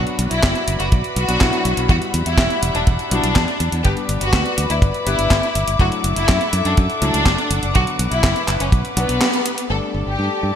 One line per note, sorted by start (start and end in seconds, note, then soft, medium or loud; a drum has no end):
0.00 1.13 F#3 medium
0.00 1.13 B3 medium
0.00 1.13 D4 medium
0.00 1.13 F#4 medium
0.00 1.86 F#4 medium
0.00 1.88 B4 medium
0.00 1.88 D5 medium
0.00 3.81 B5 medium
0.07 closed hi-hat soft
0.19 0.27 B1 loud
0.19 closed hi-hat medium
0.31 0.40 B1 medium
0.31 0.73 E4 loud
0.31 closed hi-hat medium
0.43 0.52 F#1 loud
0.43 kick loud
0.43 snare loud
0.43 clap medium
0.43 closed hi-hat medium
0.55 closed hi-hat soft
0.68 0.76 F#1 loud
0.68 closed hi-hat medium
0.80 0.88 F#1 medium
0.80 0.88 F#4 medium
0.80 closed hi-hat soft
0.92 1.01 B1 loud
0.92 kick loud
0.92 closed hi-hat medium
1.04 closed hi-hat soft
1.16 1.25 B1 medium
1.16 1.80 F#4 loud
1.16 closed hi-hat medium
1.28 1.37 B1 medium
1.28 1.38 F#3 medium
1.28 1.38 B3 medium
1.28 1.38 D4 medium
1.28 1.38 F#4 medium
1.28 closed hi-hat medium
1.41 1.50 B1 loud
1.41 1.87 F#3 loud
1.41 1.87 B3 medium
1.41 1.87 D4 medium
1.41 1.87 E4 loud
1.41 kick loud
1.41 snare loud
1.41 clap medium
1.41 closed hi-hat soft
1.53 closed hi-hat soft
1.65 1.74 B1 medium
1.65 closed hi-hat medium
1.77 1.86 B1 medium
1.77 closed hi-hat medium
1.89 1.98 E2 loud
1.89 3.09 G3 medium
1.89 3.83 G3 medium
1.89 3.09 B3 medium
1.89 3.09 E4 medium
1.89 3.09 F#4 medium
1.89 1.98 F#4 loud
1.89 3.83 E5 medium
1.89 3.83 F#5 medium
1.89 kick loud
1.89 closed hi-hat medium
2.02 closed hi-hat soft
2.14 2.23 E2 loud
2.14 closed hi-hat medium
2.26 2.35 E2 medium
2.26 2.68 E4 loud
2.26 closed hi-hat medium
2.38 2.47 E1 loud
2.38 kick loud
2.38 snare loud
2.38 clap medium
2.38 closed hi-hat medium
2.50 closed hi-hat soft
2.63 2.71 E1 loud
2.63 closed hi-hat medium
2.75 2.83 E1 medium
2.75 2.83 D4 loud
2.75 closed hi-hat soft
2.87 2.96 E1 loud
2.87 kick loud
2.87 closed hi-hat soft
2.99 closed hi-hat soft
3.11 3.20 B1 medium
3.11 3.38 G3 medium
3.11 3.38 B3 medium
3.11 3.75 D4 loud
3.11 3.38 E4 medium
3.11 3.38 F#4 medium
3.11 closed hi-hat medium
3.24 3.32 B1 medium
3.24 closed hi-hat medium
3.36 3.44 E2 loud
3.36 kick loud
3.36 snare loud
3.36 clap medium
3.36 closed hi-hat soft
3.48 closed hi-hat soft
3.60 3.69 E2 medium
3.60 closed hi-hat medium
3.72 3.81 E2 medium
3.72 closed hi-hat medium
3.85 3.94 G1 medium
3.85 5.04 G3 medium
3.85 5.04 B3 medium
3.85 5.04 D4 medium
3.85 3.93 G4 loud
3.85 5.78 B4 medium
3.85 5.04 B4 medium
3.85 5.78 D5 medium
3.85 5.78 B5 medium
3.85 9.66 D6 medium
3.85 kick loud
3.85 closed hi-hat medium
3.97 closed hi-hat soft
4.09 4.18 G1 loud
4.09 closed hi-hat medium
4.21 4.30 G1 medium
4.21 4.64 F#4 loud
4.21 closed hi-hat medium
4.33 4.42 D2 loud
4.33 kick medium
4.33 snare loud
4.33 clap medium
4.33 closed hi-hat medium
4.46 closed hi-hat soft
4.58 4.66 D2 medium
4.58 closed hi-hat loud
4.70 4.79 D2 medium
4.70 4.78 E4 medium
4.70 closed hi-hat soft
4.82 4.91 G1 loud
4.82 kick loud
4.82 closed hi-hat soft
4.94 closed hi-hat soft
5.07 5.15 G1 medium
5.07 5.33 B3 medium
5.07 5.33 D4 medium
5.07 5.70 E4 loud
5.07 5.33 G4 medium
5.07 5.33 B4 medium
5.07 closed hi-hat medium
5.19 5.27 G1 medium
5.19 closed hi-hat medium
5.31 5.39 G1 loud
5.31 kick medium
5.31 snare loud
5.31 clap medium
5.31 closed hi-hat medium
5.43 closed hi-hat soft
5.55 5.64 G1 loud
5.55 closed hi-hat medium
5.68 5.76 G1 medium
5.68 closed hi-hat medium
5.79 5.88 F#1 loud
5.79 6.99 F#3 medium
5.79 6.99 A3 medium
5.79 6.99 D4 medium
5.79 6.99 E4 medium
5.79 5.88 F#4 loud
5.79 7.73 A4 medium
5.79 7.73 E5 medium
5.79 9.66 F#5 medium
5.79 kick loud
5.79 closed hi-hat medium
5.92 closed hi-hat soft
6.04 6.13 F#1 loud
6.04 closed hi-hat loud
6.16 6.25 F#1 medium
6.16 6.59 E4 loud
6.16 closed hi-hat medium
6.29 6.37 F#2 loud
6.29 kick loud
6.29 snare loud
6.29 clap medium
6.29 closed hi-hat medium
6.41 closed hi-hat soft
6.53 6.62 F#2 loud
6.53 closed hi-hat loud
6.65 6.74 F#2 medium
6.65 6.73 D4 loud
6.65 closed hi-hat medium
6.77 6.86 F#2 loud
6.77 kick loud
6.77 closed hi-hat medium
6.90 closed hi-hat soft
7.02 7.10 C#2 loud
7.02 7.29 F#3 medium
7.02 7.29 A3 medium
7.02 7.65 D4 loud
7.02 7.29 D4 medium
7.02 7.29 E4 medium
7.02 closed hi-hat medium
7.14 7.23 C#2 medium
7.14 closed hi-hat medium
7.26 7.35 F#1 loud
7.26 kick medium
7.26 snare loud
7.26 clap medium
7.26 closed hi-hat medium
7.38 closed hi-hat soft
7.50 7.59 F#1 medium
7.50 closed hi-hat loud
7.63 7.71 F#1 medium
7.63 closed hi-hat medium
7.75 7.84 B1 loud
7.75 8.94 D3 medium
7.75 8.94 F#3 medium
7.75 8.94 B3 medium
7.75 7.83 F#4 loud
7.75 8.94 F#4 medium
7.75 9.68 B4 medium
7.75 kick loud
7.75 closed hi-hat medium
7.87 closed hi-hat soft
7.99 8.08 B1 medium
7.99 closed hi-hat loud
8.11 8.20 B1 medium
8.11 8.54 E4 loud
8.11 closed hi-hat medium
8.24 8.32 F#1 loud
8.24 kick loud
8.24 snare loud
8.24 clap loud
8.24 closed hi-hat medium
8.36 closed hi-hat soft
8.48 8.57 F#1 loud
8.48 clap medium
8.48 closed hi-hat loud
8.60 8.69 F#1 medium
8.60 8.68 C#4 medium
8.60 closed hi-hat medium
8.72 8.81 B1 loud
8.72 kick loud
8.72 closed hi-hat medium
8.85 closed hi-hat soft
8.97 9.05 B1 loud
8.97 9.24 F#3 medium
8.97 9.24 B3 medium
8.97 9.60 B3 loud
8.97 9.24 D4 medium
8.97 9.24 F#4 loud
8.97 closed hi-hat loud
9.09 9.18 B1 medium
9.09 closed hi-hat medium
9.21 snare loud
9.21 clap medium
9.21 closed hi-hat medium
9.33 closed hi-hat soft
9.46 closed hi-hat loud
9.58 closed hi-hat medium
9.70 9.79 G1 medium
9.70 10.56 G3 medium
9.70 10.56 A3 medium
9.70 10.56 D4 medium
9.70 10.56 A4 medium
9.70 9.78 A4 medium
9.70 10.56 D5 medium
9.70 10.56 A5 medium
9.70 10.56 D6 medium
9.94 10.03 G1 medium
10.07 10.15 G1 medium
10.07 10.49 G4 medium
10.19 10.27 G2 medium
10.43 10.52 G2 medium